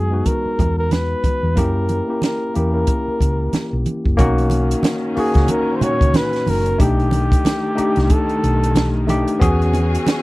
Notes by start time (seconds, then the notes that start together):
Already playing: F#2 G#3 B3 D#4 F#4 G#4
0.11 G#3 B3 D#4 F#4
0.26 A#4, kick, closed hi-hat, muted conga
0.46 muted fingered electric bass stroke
0.59 E2, kick, closed hi-hat, muted conga, low conga
0.78 A#4
0.91 B4, snare, closed hi-hat, high conga
1.24 muted fingered electric bass stroke, kick, closed hi-hat, high conga
1.43 E2
1.55 F#2 A#3 C#4 E4 G4 A#4, kick, closed hi-hat, muted conga
1.89 closed hi-hat, muted conga
2.08 A#3 C#4 E4 G4
2.22 A#4, snare, closed hi-hat, high conga
2.54 E2 A#3 C#4 E4 G4 A#4, closed hi-hat
2.72 A#3 C#4 E4 A#4
2.87 kick, closed hi-hat, muted conga
3.08 muted fingered electric bass stroke
3.21 C#2, kick, closed hi-hat
3.53 muted fingered electric bass stroke, snare, closed hi-hat, high conga
3.73 B1
3.86 closed hi-hat, high conga
4.05 F#1, kick
4.17 B1 D#3 A#3 C#4 D#4 F#4, kick, closed hi-hat, muted conga
4.38 closed hi-hat
4.50 closed hi-hat, muted conga
4.71 closed hi-hat
4.83 snare, closed hi-hat, high conga
5.16 A#3 C#4 D#4 F#4 G#4, muted fingered electric bass stroke, open hi-hat
5.34 C#2 A#3 C#4 D#4 F#4, kick, snare, closed hi-hat
5.48 A#4, closed hi-hat, muted conga
5.76 C5
5.81 A#2 C#4 D#4 F#4 C#5, muted fingered electric bass stroke, closed hi-hat, low conga
6.01 C#2, kick, closed hi-hat
6.14 B4, snare, closed hi-hat, high conga
6.33 snare, closed hi-hat
6.46 F#1 A#4, open hi-hat, high conga
6.66 closed hi-hat
6.78 B1 D#3 A3 D4 D#4 G4, kick, closed hi-hat, muted conga
7.00 closed hi-hat
7.11 closed hi-hat, muted conga
7.32 kick, closed hi-hat
7.45 snare, closed hi-hat, high conga
7.75 A3 D4 D#4 G4, muted fingered electric bass stroke, closed hi-hat
7.96 C2, snare, closed hi-hat
8.10 A4, kick, closed hi-hat, muted conga
8.29 closed hi-hat
8.44 B1, closed hi-hat
8.63 closed hi-hat
8.75 snare, closed hi-hat, high conga
9.07 A3 D4 D#4 G4, closed hi-hat, high conga
9.28 closed hi-hat
9.39 E2 E3 B3 C#4 F#4 G#4, kick, closed hi-hat, muted conga
9.62 closed hi-hat
9.73 closed hi-hat, muted conga
9.95 closed hi-hat
10.07 snare, closed hi-hat, high conga